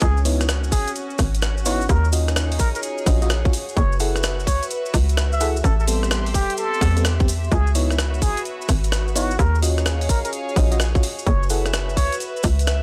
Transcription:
0.01 fm bass C#2, string section C#4, muted trumpet G#4, kick, closed hi-hat, cabasa
0.17 string section F#4, cabasa
0.25 fm electric piano B3 D#4 E4 C#5, open hi-hat, cabasa
0.41 cross-stick, cabasa
0.49 cross-stick, closed hi-hat, cabasa
0.64 cabasa
0.72 fm bass G#1, muted trumpet G#4, kick, open hi-hat, cabasa
0.88 closed hi-hat, cabasa
0.96 closed hi-hat, cabasa
1.10 cabasa
1.18 fm bass G#1, kick, cross-stick, open hi-hat, cabasa
1.35 closed hi-hat, cabasa
1.42 cross-stick, closed hi-hat, cabasa
1.58 cabasa
1.65 fm electric piano B3 D#4 E4 C#5, muted trumpet F#4, open hi-hat, cabasa
1.81 cabasa
1.89 fm bass D#2, string section D#4, muted trumpet A#4, kick, closed hi-hat, cabasa
2.05 string section G#4, cabasa
2.12 fm electric piano C#4 F4 F#4 D#5, open hi-hat, cabasa
2.28 string section C#5, cross-stick, closed hi-hat, cabasa
2.36 cross-stick, closed hi-hat, cabasa
2.52 open hi-hat, cabasa
2.59 fm bass A#1, muted trumpet A#4, kick, open hi-hat, cabasa
2.75 muted trumpet A#4, closed hi-hat, cabasa
2.83 closed hi-hat, cabasa
2.98 cabasa
3.06 fm bass A#1, fm electric piano C#4 F4 F#4 D#5, kick, cross-stick, open hi-hat, cabasa
3.22 fm electric piano C#4 F4 F#4 D#5, closed hi-hat, cabasa
3.30 cross-stick, closed hi-hat, cabasa
3.45 fm electric piano C#4 F4 F#4 C#5, kick, cabasa
3.53 string section F#4, open hi-hat, cabasa
3.69 cabasa
3.77 fm bass F#1, muted trumpet C#5, kick, closed hi-hat, cabasa
3.83 string section B4
3.92 string section E5, cabasa
4.00 fm electric piano E4 G#4 A4 F#5, open hi-hat, cabasa
4.16 cross-stick, closed hi-hat, cabasa
4.23 cross-stick, closed hi-hat, cabasa
4.40 cabasa
4.47 fm bass C#2, muted trumpet C#5, kick, open hi-hat, cabasa
4.63 closed hi-hat, cabasa
4.71 closed hi-hat, cabasa
4.86 cabasa
4.94 fm bass C#2, kick, cross-stick, open hi-hat, cabasa
5.09 closed hi-hat, cabasa
5.17 cross-stick, closed hi-hat, cabasa
5.32 muted trumpet E5, cabasa
5.40 fm electric piano E4 G#4 A4 F#5, open hi-hat, cabasa
5.56 cabasa
5.64 fm bass A1, string section G4, muted trumpet A4, kick, closed hi-hat, cabasa
5.80 muted trumpet A4, cabasa
5.84 fm electric piano G3 B3 C4 A4, string section C6, open hi-hat, cabasa
6.03 cross-stick, closed hi-hat, cabasa
6.11 cross-stick, closed hi-hat, cabasa
6.26 open hi-hat, cabasa
6.34 fm bass E1, muted trumpet G4, kick, open hi-hat, cabasa
6.50 closed hi-hat, cabasa
6.57 muted trumpet A4, closed hi-hat, cabasa
6.74 cabasa
6.81 fm bass E2, fm electric piano G3 B3 C4 A4, kick, cross-stick, open hi-hat, cabasa
6.97 fm electric piano G3 B3 C4 A4, closed hi-hat, cabasa
7.05 cross-stick, closed hi-hat, cabasa
7.20 fm electric piano G3 B3 C4 G4, kick, cabasa
7.28 open hi-hat, cabasa
7.44 cabasa
7.52 fm bass C#2, string section F#4, muted trumpet G#4, kick, closed hi-hat, cabasa
7.67 cabasa
7.75 fm electric piano B3 D#4 E4 C#5, open hi-hat, cabasa
7.82 string section B4
7.91 cross-stick, closed hi-hat, cabasa
7.99 cross-stick, closed hi-hat, cabasa
8.14 cabasa
8.22 fm bass G#1, muted trumpet G#4, kick, open hi-hat, cabasa
8.37 closed hi-hat, cabasa
8.45 closed hi-hat, cabasa
8.61 cabasa
8.69 fm bass G#1, kick, cross-stick, open hi-hat, cabasa
8.84 closed hi-hat, cabasa
8.92 cross-stick, closed hi-hat, cabasa
9.08 cabasa
9.16 fm electric piano B3 D#4 E4 C#5, muted trumpet F#4, open hi-hat, cabasa
9.31 cabasa
9.39 fm bass D#2, string section G#4, muted trumpet A#4, kick, closed hi-hat, cabasa
9.55 cabasa
9.61 fm electric piano C#4 F4 F#4 D#5, string section C#5, open hi-hat, cabasa
9.78 cross-stick, closed hi-hat, cabasa
9.86 cross-stick, closed hi-hat, cabasa
9.92 string section F5
10.01 open hi-hat, cabasa
10.09 fm bass A#1, muted trumpet A#4, kick, open hi-hat, cabasa
10.25 muted trumpet A#4, closed hi-hat, cabasa
10.33 closed hi-hat, cabasa
10.49 cabasa
10.56 fm bass A#1, fm electric piano C#4 F4 F#4 D#5, kick, cross-stick, open hi-hat, cabasa
10.72 fm electric piano C#4 F4 F#4 D#5, closed hi-hat, cabasa
10.80 cross-stick, closed hi-hat, cabasa
10.95 fm electric piano C#4 F4 F#4 C#5, kick, cabasa
11.03 string section F#4, open hi-hat, cabasa
11.19 cabasa
11.27 fm bass F#1, muted trumpet C#5, kick, closed hi-hat, cabasa
11.31 string section B4
11.43 cabasa
11.50 fm electric piano E4 G#4 A4 F#5, string section E5, open hi-hat, cabasa
11.66 cross-stick, closed hi-hat, cabasa
11.73 cross-stick, closed hi-hat, cabasa
11.89 cabasa
11.97 fm bass C#2, muted trumpet C#5, kick, open hi-hat, cabasa
12.12 closed hi-hat, cabasa
12.20 closed hi-hat, cabasa
12.37 cabasa
12.43 fm bass C#2, kick, cross-stick, open hi-hat, cabasa
12.59 closed hi-hat, cabasa
12.67 cross-stick, closed hi-hat, cabasa

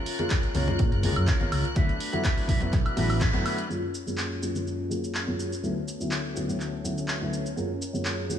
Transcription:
Already playing: clean electric guitar C#4 F4 A#4, violin section F#6
0.06 open hi-hat
0.19 grand piano G#3 A#3 C#4 F4, clean electric guitar F4 A#4, closed hi-hat, high conga, maracas
0.30 clean electric guitar C#4 F4 A#4, kick, clap, closed hi-hat
0.43 closed hi-hat, maracas
0.54 fingered electric bass C#2, grand piano G#3 A#3 C#4 F4, clean electric guitar C#4 F4 A#4, open hi-hat, high conga
0.68 grand piano G#3 A#3 C#4 F4, closed hi-hat, low conga, maracas
0.79 fingered electric bass A#2, kick, closed hi-hat, maracas
0.92 fingered electric bass F#1, clean electric guitar F4 A#4, closed hi-hat, maracas
1.03 fingered electric bass C#2, grand piano G#3 A#3 C#4 F4, clean electric guitar C#4 F4 A#4, open hi-hat, high conga
1.16 fingered electric bass F#2, closed hi-hat, high woodblock, maracas
1.27 clean electric guitar C#4 F4 A#4, kick, clap, closed hi-hat
1.39 grand piano G#3 A#3 C#4 F4, clean electric guitar F4 A#4, closed hi-hat, high conga, maracas
1.51 fingered electric bass C#2, clean electric guitar C#4 F4 A#4, open hi-hat, high woodblock
1.64 closed hi-hat, maracas
1.75 fingered electric bass D2, grand piano F#3 A3 B3 E4, clean electric guitar A3 D4 F#4 B4, kick, closed hi-hat, high conga, maracas
1.89 closed hi-hat, maracas
2.00 open hi-hat
2.12 grand piano F#3 A3 B3 E4, clean electric guitar D4 F#4 B4, closed hi-hat, high conga, maracas
2.24 clean electric guitar A3 D4 F#4 B4, kick, clap, closed hi-hat, maracas
2.38 open hi-hat, maracas
2.48 fingered electric bass B1, grand piano F#3 A3 B3 E4, clean electric guitar A3 D4 F#4 B4, kick, open hi-hat, high conga
2.60 grand piano F#3 A3 B3 E4, clean electric guitar D4 F#4 B4, closed hi-hat, low conga, maracas
2.73 fingered electric bass B1, kick, clap, closed hi-hat, maracas
2.85 clean electric guitar D4 F#4 B4, closed hi-hat, high woodblock, maracas
2.96 fingered electric bass A1, grand piano F#3 A3 B3 E4, clean electric guitar A3 D4 F#4 B4, open hi-hat, high conga
3.09 open hi-hat, high woodblock, maracas
3.20 clean electric guitar A3 D4 F#4 B4, kick, clap, closed hi-hat, maracas
3.33 grand piano F#3 A3 B3 E4, clean electric guitar D4 F#4 B4, closed hi-hat, high conga, low conga, maracas
3.44 clean electric guitar A3 D4 F#4 B4, open hi-hat, high woodblock
3.58 closed hi-hat, maracas
3.69 grand piano F#2 G#3 A#3 C#4 F4, clean electric guitar C#4, violin section C#4 F#6, shaker
3.73 clean electric guitar A#4
3.95 shaker
4.06 grand piano F#2 G#3 A#3 C#4 F4, shaker
4.18 clap, shaker
4.42 grand piano F#2 G#3 A#3 C#4 F4, shaker
4.55 grand piano F#2 G#3 A#3 C#4 F4, shaker
4.65 clean electric guitar C#4 F4 A#4, shaker
4.90 grand piano F#2 G#3 A#3 C#4 F4, shaker
5.04 shaker
5.14 clean electric guitar C#4 F4 A#4, clap, shaker
5.27 grand piano F#2 G#3 A#3 C#4 F4
5.40 shaker
5.52 shaker
5.62 grand piano D2 F#3 A3 B3 E4, clean electric guitar A3 B3 F#4, shaker
5.66 clean electric guitar A4
5.88 shaker
6.00 grand piano D2 F#3 A3 B3 E4, shaker
6.11 clap, shaker
6.35 grand piano D2 F#3 A3 B3 E4, shaker
6.48 grand piano D2 F#3 A3 B3 E4, shaker
6.59 clean electric guitar A3 B3 F#4 A4, clap, shaker
6.84 grand piano D2 F#3 A3 B3 E4, shaker
6.98 shaker
7.08 clean electric guitar A3 B3 A4, clap, shaker
7.21 grand piano D2 F#3 A3 B3 E4
7.33 shaker
7.46 shaker
7.56 grand piano F#2 G#3 A#3 C#4 F4, clean electric guitar C#4 F4 A#4, shaker
7.81 clean electric guitar F4 A#4, shaker
7.93 grand piano F#2 G#3 A#3 C#4 F4, shaker
8.05 clap, shaker
8.29 grand piano F#2 G#3 A#3 C#4 F4, shaker

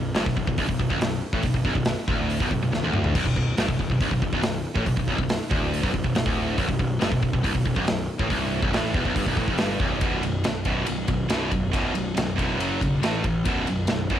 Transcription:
Already playing: picked electric bass B0, distorted electric guitar B1
0.15 picked electric bass G1, distorted electric guitar G2, snare, open hi-hat
0.26 picked electric bass B0, distorted electric guitar B1, kick
0.36 picked electric bass B0, distorted electric guitar B1, kick
0.47 picked electric bass B0, distorted electric guitar B1, kick
0.58 picked electric bass C1, distorted electric guitar C2, kick, open hi-hat
0.68 picked electric bass B0, distorted electric guitar B1, kick
0.79 picked electric bass B0, distorted electric guitar B1, kick
0.89 picked electric bass B0, distorted electric guitar B1, kick
1.00 picked electric bass B0, distorted electric guitar B1, snare, open hi-hat
1.33 picked electric bass A1, distorted electric guitar A2, kick
1.43 picked electric bass B0, distorted electric guitar B1, kick, open hi-hat
1.54 picked electric bass B0, distorted electric guitar B1, kick
1.65 picked electric bass B0, distorted electric guitar B1, kick
1.75 picked electric bass B0, distorted electric guitar B1, kick
1.85 snare, open hi-hat
1.97 snare
2.08 picked electric bass D1, distorted electric guitar D2, kick
2.30 open hi-hat
2.40 picked electric bass B0, distorted electric guitar B1, kick
2.51 picked electric bass B0, distorted electric guitar B1, kick
2.63 picked electric bass B0, distorted electric guitar B1
2.73 picked electric bass B0, distorted electric guitar B1, snare
2.83 picked electric bass D1, distorted electric guitar D2, high tom
2.93 mid tom
3.04 floor tom
3.15 picked electric bass B0, distorted electric guitar B1, kick, crash
3.26 picked electric bass B0, distorted electric guitar B1, kick
3.36 picked electric bass B0, distorted electric guitar B1, kick
3.57 picked electric bass G1, distorted electric guitar G2, snare, open hi-hat
3.69 picked electric bass B0, distorted electric guitar B1, kick
3.79 picked electric bass B0, distorted electric guitar B1, kick
3.90 picked electric bass B0, distorted electric guitar B1, kick
4.00 picked electric bass C1, distorted electric guitar C2, kick, open hi-hat
4.11 picked electric bass B0, distorted electric guitar B1, kick
4.22 picked electric bass B0, distorted electric guitar B1, kick
4.33 picked electric bass B0, distorted electric guitar B1, kick
4.43 picked electric bass B0, distorted electric guitar B1, snare, open hi-hat
4.76 picked electric bass A1, distorted electric guitar A2, kick
4.86 picked electric bass B0, distorted electric guitar B1, kick, open hi-hat
4.97 picked electric bass B0, distorted electric guitar B1, kick
5.08 picked electric bass B0, distorted electric guitar B1, kick
5.18 picked electric bass B0, distorted electric guitar B1, kick
5.23 distorted electric guitar B1
5.29 snare, open hi-hat
5.41 snare
5.51 picked electric bass D1, distorted electric guitar D2, kick
5.74 open hi-hat
5.83 picked electric bass B0, distorted electric guitar B1, kick
5.94 picked electric bass B0, distorted electric guitar B1, kick
6.04 picked electric bass B0, distorted electric guitar B1, kick
6.15 picked electric bass B0, distorted electric guitar B1, snare, open hi-hat
6.26 picked electric bass D1, distorted electric guitar D2, kick
6.58 picked electric bass B0, distorted electric guitar B1, kick, open hi-hat
6.68 picked electric bass B0, distorted electric guitar B1, kick
6.79 picked electric bass B0, distorted electric guitar B1, kick
6.99 picked electric bass G1, distorted electric guitar G2, snare, open hi-hat
7.11 picked electric bass B0, distorted electric guitar B1, kick
7.22 picked electric bass B0, distorted electric guitar B1, kick
7.33 picked electric bass B0, distorted electric guitar B1, kick
7.43 picked electric bass C1, distorted electric guitar C2, kick, open hi-hat
7.54 picked electric bass B0, distorted electric guitar B1, kick
7.65 picked electric bass B0, distorted electric guitar B1, kick
7.76 picked electric bass B0, distorted electric guitar B1, kick
7.87 picked electric bass B0, distorted electric guitar B1, snare, open hi-hat
8.19 picked electric bass A1, distorted electric guitar A2, kick
8.30 picked electric bass C1, distorted electric guitar C2, kick, open hi-hat
8.62 picked electric bass B0, distorted electric guitar B1, kick
8.72 picked electric bass A1, distorted electric guitar A2, snare, open hi-hat
8.85 snare
8.94 picked electric bass E1, distorted electric guitar E2, kick
9.05 picked electric bass B0, distorted electric guitar B1, kick
9.16 picked electric bass G1, distorted electric guitar G2, kick, open hi-hat
9.26 picked electric bass B0, distorted electric guitar B1, kick
9.37 picked electric bass A1, distorted electric guitar A2, kick
9.48 picked electric bass F1, distorted electric guitar F2, kick
9.58 picked electric bass G1, distorted electric guitar G2, snare, open hi-hat
9.80 picked electric bass B0, distorted electric guitar B1, kick
10.01 picked electric bass B0, distorted electric guitar B1 F#2 B2, kick, ride
10.23 picked electric bass B0, distorted electric guitar B1 F#2, ride
10.44 picked electric bass B0, distorted electric guitar B1 F#2, snare, ride
10.65 picked electric bass B0, distorted electric guitar B1 F#2 B2, kick, ride
10.86 picked electric bass B0, distorted electric guitar B1 F#2, ride
11.08 picked electric bass B0, distorted electric guitar B1 F#2, kick, ride
11.30 picked electric bass B0, distorted electric guitar B1 F#2 B2, snare, ride
11.52 picked electric bass B0, distorted electric guitar B1 F#2, kick, ride
11.73 picked electric bass B0, distorted electric guitar B1 F#2 B2, kick, ride
11.93 picked electric bass B0, distorted electric guitar B1 F#2, ride
12.14 picked electric bass B0, distorted electric guitar B1 F#2, snare, ride
12.19 distorted electric guitar F#2
12.37 picked electric bass E1, distorted electric guitar B1 F#2 B2, kick, ride
12.59 picked electric bass F#1, distorted electric guitar F#2 C#3 F#3, ride
12.81 picked electric bass B1, distorted electric guitar F#2 C#3, kick, ride
13.02 picked electric bass A1, distorted electric guitar A2 E3 A3, snare, ride
13.23 picked electric bass A1, distorted electric guitar A2 E3, kick, ride
13.44 picked electric bass B0, distorted electric guitar B1 F#2 B2, kick, ride
13.67 picked electric bass B0, distorted electric guitar B1 F#2, ride
13.87 picked electric bass B0, distorted electric guitar B1 F#2, snare, ride
14.10 picked electric bass B0, distorted electric guitar B1 F#2 B2, kick, ride

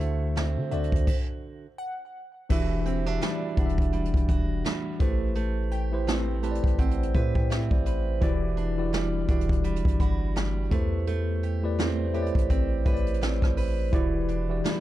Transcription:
Already playing: 808-style bass D2, tine electric piano D3 D4 F#4 C5 E5, steel-string acoustic guitar D3
0.00 steel-string acoustic guitar A3, closed hi-hat
0.36 steel-string acoustic guitar C4, snare, closed hi-hat
0.57 808-style bass D3
0.71 808-style bass D2, tine electric piano D3 D4 F#4 C5 D5, steel-string acoustic guitar F#4, synth pluck E5, closed hi-hat
0.84 closed hi-hat
0.92 808-style bass D2, kick, closed hi-hat
1.07 kick, crash
1.78 synth pluck F#5
2.49 808-style bass E1, tine electric piano E3 D4 F#4 G4 E5, steel-string acoustic guitar E3, kick, crash
2.86 steel-string acoustic guitar C4, closed hi-hat
3.06 tine electric piano E3 D4 F#4 G4 E5, steel-string acoustic guitar D4
3.21 steel-string acoustic guitar G3, synth pluck D5, snare, closed hi-hat
3.57 808-style bass E1, tine electric piano E3 D4 G4 F#5, steel-string acoustic guitar D4, kick, closed hi-hat
3.66 tine electric piano E5, closed hi-hat
3.78 kick, closed hi-hat
3.93 steel-string acoustic guitar G3, closed hi-hat
4.05 closed hi-hat
4.14 808-style bass E1, kick, closed hi-hat
4.29 steel-string acoustic guitar F#4, kick, closed hi-hat
4.65 steel-string acoustic guitar G3, snare, closed hi-hat
5.00 808-style bass A1, tine electric piano A3 E4 G4 B4 C5, steel-string acoustic guitar A3, kick, closed hi-hat
5.35 steel-string acoustic guitar A3, closed hi-hat
5.72 steel-string acoustic guitar G4, synth pluck G5, closed hi-hat
5.92 tine electric piano A3 E4 G4 B4 C5
6.07 steel-string acoustic guitar C4, snare, closed hi-hat
6.42 tine electric piano A3 E4 G4 B4 C5 A5, steel-string acoustic guitar G4, closed hi-hat
6.51 tine electric piano D5, closed hi-hat
6.64 808-style bass A1, tine electric piano G5, kick, closed hi-hat
6.79 steel-string acoustic guitar C4, tine electric piano F#5, kick, closed hi-hat
6.91 closed hi-hat
7.03 closed hi-hat
7.14 808-style bass A2, tine electric piano A3 E4 G4 B4 C5, steel-string acoustic guitar B4, kick, closed hi-hat
7.35 tine electric piano G5, kick
7.50 steel-string acoustic guitar C4, tine electric piano E5, snare, closed hi-hat
7.71 808-style bass A1, tine electric piano D5, kick
7.86 steel-string acoustic guitar B4, tine electric piano C5, closed hi-hat
8.21 808-style bass E1, tine electric piano E3 E4 F#4 G4 D5, steel-string acoustic guitar E3, kick, closed hi-hat
8.57 steel-string acoustic guitar D4, closed hi-hat
8.77 tine electric piano E3 E4 F#4 G4 D5
8.93 steel-string acoustic guitar G3, snare, closed hi-hat
9.28 808-style bass E1, tine electric piano E3 E4 F#4 G4 D5, steel-string acoustic guitar D4, kick, closed hi-hat
9.41 closed hi-hat
9.49 kick, closed hi-hat
9.64 steel-string acoustic guitar G3, closed hi-hat
9.76 closed hi-hat
9.85 808-style bass G1, kick, closed hi-hat
10.00 steel-string acoustic guitar F#4, synth pluck B5, kick, closed hi-hat
10.36 steel-string acoustic guitar G3, snare, closed hi-hat
10.71 808-style bass E2, tine electric piano A3 E4 G4 B4 C5, steel-string acoustic guitar A3, kick, closed hi-hat
11.07 steel-string acoustic guitar A3, closed hi-hat
11.43 steel-string acoustic guitar G4, closed hi-hat
11.63 tine electric piano A3 E4 G4 B4 D5
11.79 steel-string acoustic guitar C4, snare, closed hi-hat
12.14 tine electric piano A3 E4 G4 B4 C#5, steel-string acoustic guitar G4, closed hi-hat
12.22 tine electric piano D5, closed hi-hat
12.35 808-style bass A1, kick, closed hi-hat
12.50 steel-string acoustic guitar C4, kick, closed hi-hat
12.85 808-style bass A1, tine electric piano A3 E4 G4 B4 C#5, steel-string acoustic guitar B4, kick, closed hi-hat
12.94 tine electric piano D5, closed hi-hat
13.07 closed hi-hat
13.14 closed hi-hat
13.21 steel-string acoustic guitar C4, snare, closed hi-hat
13.42 808-style bass A1, kick, cross-stick
13.57 steel-string acoustic guitar B4, open hi-hat
13.92 808-style bass E1, tine electric piano E3 E4 F#4 G4 D5, steel-string acoustic guitar E3, kick, closed hi-hat
14.29 steel-string acoustic guitar D4, closed hi-hat
14.49 tine electric piano E3 E4 F#4 G4 D5
14.64 steel-string acoustic guitar G3, snare, closed hi-hat

